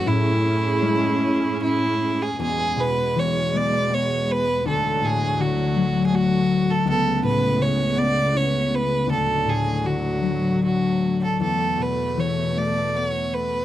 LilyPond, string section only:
\new Staff \with { instrumentName = "String section" } { \clef bass \time 3/4 \key e \mixolydian \tempo 4 = 79 <a, cis' gis'>2. | <e, b, gis>2. | <d, a, fis>2. | <cis a b>2. |
<d, a, fis>2. | <e, b, a>2. | }